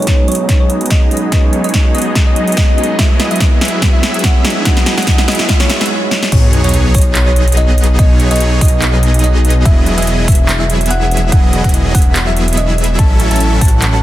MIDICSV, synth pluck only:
0, 0, Header, 1, 2, 480
1, 0, Start_track
1, 0, Tempo, 416667
1, 1523, Time_signature, 4, 2, 24, 8
1, 16161, End_track
2, 0, Start_track
2, 0, Title_t, "Synth pluck"
2, 0, Program_c, 0, 84
2, 0, Note_on_c, 0, 73, 89
2, 241, Note_off_c, 0, 73, 0
2, 323, Note_on_c, 0, 73, 92
2, 596, Note_off_c, 0, 73, 0
2, 693, Note_on_c, 0, 73, 93
2, 961, Note_off_c, 0, 73, 0
2, 1042, Note_on_c, 0, 75, 95
2, 1413, Note_off_c, 0, 75, 0
2, 1523, Note_on_c, 0, 75, 98
2, 1796, Note_off_c, 0, 75, 0
2, 1893, Note_on_c, 0, 75, 95
2, 2161, Note_off_c, 0, 75, 0
2, 2241, Note_on_c, 0, 75, 96
2, 2515, Note_off_c, 0, 75, 0
2, 2613, Note_on_c, 0, 75, 90
2, 2881, Note_off_c, 0, 75, 0
2, 2960, Note_on_c, 0, 75, 93
2, 3332, Note_off_c, 0, 75, 0
2, 3443, Note_on_c, 0, 76, 95
2, 3716, Note_off_c, 0, 76, 0
2, 3810, Note_on_c, 0, 76, 91
2, 4080, Note_off_c, 0, 76, 0
2, 4163, Note_on_c, 0, 76, 92
2, 4436, Note_off_c, 0, 76, 0
2, 4530, Note_on_c, 0, 76, 93
2, 4799, Note_off_c, 0, 76, 0
2, 4880, Note_on_c, 0, 78, 98
2, 5252, Note_off_c, 0, 78, 0
2, 5361, Note_on_c, 0, 78, 99
2, 5635, Note_off_c, 0, 78, 0
2, 5731, Note_on_c, 0, 78, 92
2, 6000, Note_off_c, 0, 78, 0
2, 6083, Note_on_c, 0, 75, 99
2, 6356, Note_off_c, 0, 75, 0
2, 6453, Note_on_c, 0, 73, 92
2, 6721, Note_off_c, 0, 73, 0
2, 7284, Note_on_c, 0, 73, 96
2, 7557, Note_off_c, 0, 73, 0
2, 7654, Note_on_c, 0, 73, 91
2, 7921, Note_off_c, 0, 73, 0
2, 8006, Note_on_c, 0, 73, 95
2, 8277, Note_off_c, 0, 73, 0
2, 8375, Note_on_c, 0, 73, 90
2, 8642, Note_off_c, 0, 73, 0
2, 8724, Note_on_c, 0, 75, 101
2, 9094, Note_off_c, 0, 75, 0
2, 9205, Note_on_c, 0, 75, 100
2, 9477, Note_off_c, 0, 75, 0
2, 9573, Note_on_c, 0, 75, 94
2, 9841, Note_off_c, 0, 75, 0
2, 9922, Note_on_c, 0, 75, 95
2, 10195, Note_off_c, 0, 75, 0
2, 10292, Note_on_c, 0, 75, 93
2, 10560, Note_off_c, 0, 75, 0
2, 10642, Note_on_c, 0, 75, 100
2, 11013, Note_off_c, 0, 75, 0
2, 11122, Note_on_c, 0, 76, 100
2, 11395, Note_off_c, 0, 76, 0
2, 11494, Note_on_c, 0, 76, 89
2, 11761, Note_off_c, 0, 76, 0
2, 11842, Note_on_c, 0, 76, 98
2, 12115, Note_off_c, 0, 76, 0
2, 12211, Note_on_c, 0, 76, 93
2, 12480, Note_off_c, 0, 76, 0
2, 12563, Note_on_c, 0, 78, 102
2, 12933, Note_off_c, 0, 78, 0
2, 13044, Note_on_c, 0, 78, 100
2, 13316, Note_off_c, 0, 78, 0
2, 13411, Note_on_c, 0, 78, 92
2, 13680, Note_off_c, 0, 78, 0
2, 13763, Note_on_c, 0, 78, 99
2, 14036, Note_off_c, 0, 78, 0
2, 14134, Note_on_c, 0, 76, 91
2, 14401, Note_off_c, 0, 76, 0
2, 14483, Note_on_c, 0, 75, 102
2, 14853, Note_off_c, 0, 75, 0
2, 14963, Note_on_c, 0, 81, 99
2, 15236, Note_off_c, 0, 81, 0
2, 15334, Note_on_c, 0, 81, 91
2, 15602, Note_off_c, 0, 81, 0
2, 15682, Note_on_c, 0, 81, 96
2, 15955, Note_off_c, 0, 81, 0
2, 16053, Note_on_c, 0, 81, 96
2, 16161, Note_off_c, 0, 81, 0
2, 16161, End_track
0, 0, End_of_file